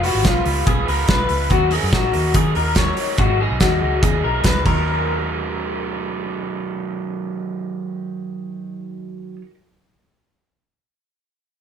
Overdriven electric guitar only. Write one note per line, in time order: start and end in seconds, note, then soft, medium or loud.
0.03 0.23 B3 soft
0.03 0.24 F4 soft
0.03 0.24 B4 medium
0.22 0.44 F3 medium
0.22 0.45 G#3 medium
0.22 0.45 B3 medium
0.22 0.45 F4 medium
0.22 0.43 B4 medium
0.45 0.65 B3 soft
0.45 0.66 F4 soft
0.45 0.66 B4 medium
0.65 0.87 G#3 medium
0.65 0.87 B3 medium
0.65 0.87 F4 medium
0.65 0.84 B4 medium
0.86 1.07 B3 medium
0.86 1.08 F4 medium
0.86 1.07 B4 medium
1.07 1.29 F3 medium
1.07 1.29 G#3 medium
1.07 1.29 B3 medium
1.07 1.29 F4 medium
1.07 1.27 B4 medium
1.28 1.51 B3 soft
1.28 1.51 F4 medium
1.28 1.50 B4 medium
1.49 1.71 D#3 medium
1.49 1.71 F#3 medium
1.49 1.72 D#4 medium
1.49 1.70 F#4 loud
1.49 1.69 A#4 medium
1.70 1.92 D#4 soft
1.70 1.92 F#4 soft
1.70 1.91 A#4 soft
1.91 2.13 D#3 medium
1.91 2.13 F#3 medium
1.91 2.13 D#4 medium
1.91 2.13 F#4 medium
1.91 2.11 A#4 medium
2.13 2.33 D#4 soft
2.13 2.35 F#4 soft
2.13 2.34 A#4 medium
2.34 2.55 F#3 medium
2.34 2.55 D#4 medium
2.34 2.55 F#4 medium
2.34 2.54 A#4 medium
2.55 2.77 D#4 soft
2.55 2.77 F#4 medium
2.55 2.76 A#4 medium
2.76 2.97 D#3 medium
2.76 2.98 F#3 medium
2.76 2.98 D#4 medium
2.76 2.98 F#4 medium
2.76 2.97 A#4 medium
2.98 3.19 D#4 medium
2.98 3.20 F#4 medium
2.98 3.19 A#4 medium
3.18 3.39 G#2 medium
3.18 3.39 D#3 medium
3.18 3.40 F#3 medium
3.18 3.40 B3 medium
3.18 3.39 D#4 medium
3.18 3.38 G#4 loud
3.39 3.60 F#3 soft
3.39 3.60 B3 soft
3.39 3.61 D#4 soft
3.39 3.60 G#4 medium
3.60 3.81 G#2 medium
3.60 3.81 D#3 medium
3.60 3.82 F#3 medium
3.60 3.82 B3 medium
3.60 3.81 D#4 medium
3.60 3.79 G#4 medium
3.80 4.00 F#3 soft
3.80 4.02 B3 soft
3.80 4.03 D#4 soft
3.80 4.02 G#4 medium
4.02 4.23 F#3 medium
4.02 4.23 B3 medium
4.02 4.22 D#4 medium
4.02 4.21 G#4 medium
4.22 4.44 F#3 soft
4.22 4.45 B3 soft
4.22 4.45 D#4 soft
4.22 4.44 G#4 medium
4.44 4.65 G#2 medium
4.44 4.59 D#3 medium
4.44 4.64 F#3 medium
4.44 4.66 B3 medium
4.44 4.66 D#4 medium
4.44 4.66 G#4 medium
4.60 9.36 D#3 medium
4.65 9.41 F#3 medium
4.70 9.46 D#4 medium
4.75 9.50 F#4 medium
4.75 9.54 A#4 medium